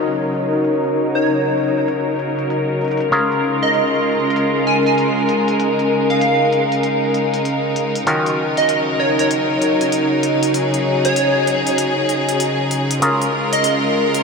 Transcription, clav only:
0, 0, Header, 1, 2, 480
1, 0, Start_track
1, 0, Key_signature, -6, "minor"
1, 0, Tempo, 618557
1, 504, Time_signature, 4, 2, 24, 8
1, 11042, End_track
2, 0, Start_track
2, 0, Title_t, "Clav"
2, 0, Program_c, 0, 7
2, 0, Note_on_c, 0, 51, 76
2, 0, Note_on_c, 0, 61, 68
2, 0, Note_on_c, 0, 65, 66
2, 0, Note_on_c, 0, 66, 67
2, 0, Note_on_c, 0, 70, 78
2, 2402, Note_off_c, 0, 51, 0
2, 2402, Note_off_c, 0, 65, 0
2, 2402, Note_off_c, 0, 66, 0
2, 2402, Note_off_c, 0, 70, 0
2, 2403, Note_off_c, 0, 61, 0
2, 2420, Note_on_c, 0, 70, 82
2, 2421, Note_on_c, 0, 61, 77
2, 2421, Note_on_c, 0, 65, 67
2, 2421, Note_on_c, 0, 68, 69
2, 6241, Note_off_c, 0, 61, 0
2, 6241, Note_off_c, 0, 65, 0
2, 6241, Note_off_c, 0, 68, 0
2, 6241, Note_off_c, 0, 70, 0
2, 6261, Note_on_c, 0, 51, 75
2, 6261, Note_on_c, 0, 61, 71
2, 6261, Note_on_c, 0, 66, 69
2, 6262, Note_on_c, 0, 65, 69
2, 6262, Note_on_c, 0, 70, 81
2, 10081, Note_off_c, 0, 51, 0
2, 10081, Note_off_c, 0, 61, 0
2, 10081, Note_off_c, 0, 66, 0
2, 10081, Note_off_c, 0, 70, 0
2, 10082, Note_off_c, 0, 65, 0
2, 10102, Note_on_c, 0, 70, 82
2, 10103, Note_on_c, 0, 61, 72
2, 10103, Note_on_c, 0, 65, 70
2, 10103, Note_on_c, 0, 68, 69
2, 11042, Note_off_c, 0, 61, 0
2, 11042, Note_off_c, 0, 65, 0
2, 11042, Note_off_c, 0, 68, 0
2, 11042, Note_off_c, 0, 70, 0
2, 11042, End_track
0, 0, End_of_file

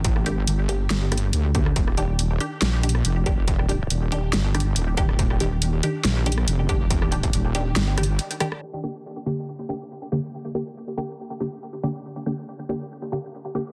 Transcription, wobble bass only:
0, 0, Header, 1, 2, 480
1, 0, Start_track
1, 0, Key_signature, -2, "minor"
1, 0, Tempo, 428571
1, 53, Time_signature, 4, 2, 24, 8
1, 15366, End_track
2, 0, Start_track
2, 0, Title_t, "Wobble bass"
2, 0, Program_c, 0, 39
2, 0, Note_on_c, 0, 33, 93
2, 236, Note_off_c, 0, 33, 0
2, 236, Note_on_c, 0, 32, 93
2, 516, Note_off_c, 0, 32, 0
2, 531, Note_on_c, 0, 31, 92
2, 995, Note_off_c, 0, 31, 0
2, 1012, Note_on_c, 0, 31, 91
2, 1475, Note_off_c, 0, 31, 0
2, 1492, Note_on_c, 0, 38, 93
2, 1955, Note_off_c, 0, 38, 0
2, 1973, Note_on_c, 0, 27, 93
2, 2675, Note_off_c, 0, 27, 0
2, 2931, Note_on_c, 0, 34, 91
2, 3394, Note_off_c, 0, 34, 0
2, 3415, Note_on_c, 0, 29, 94
2, 4356, Note_off_c, 0, 29, 0
2, 4374, Note_on_c, 0, 27, 90
2, 4836, Note_off_c, 0, 27, 0
2, 4855, Note_on_c, 0, 31, 95
2, 5317, Note_off_c, 0, 31, 0
2, 5336, Note_on_c, 0, 27, 93
2, 5797, Note_off_c, 0, 27, 0
2, 5813, Note_on_c, 0, 27, 95
2, 6515, Note_off_c, 0, 27, 0
2, 6772, Note_on_c, 0, 34, 90
2, 7235, Note_off_c, 0, 34, 0
2, 7253, Note_on_c, 0, 29, 94
2, 8195, Note_off_c, 0, 29, 0
2, 8213, Note_on_c, 0, 27, 95
2, 8675, Note_off_c, 0, 27, 0
2, 8692, Note_on_c, 0, 31, 94
2, 9173, Note_off_c, 0, 31, 0
2, 15366, End_track
0, 0, End_of_file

